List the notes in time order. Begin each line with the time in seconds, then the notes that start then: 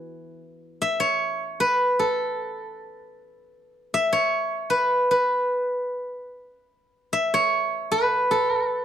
Already playing: E3 E4 F#4
0.82 E5
1.00 C#5
1.60 B4
1.99 A4
3.94 E5
4.13 C#5
4.70 B4
5.11 B4
7.13 E5
7.34 C#5
7.92 B4
8.31 A4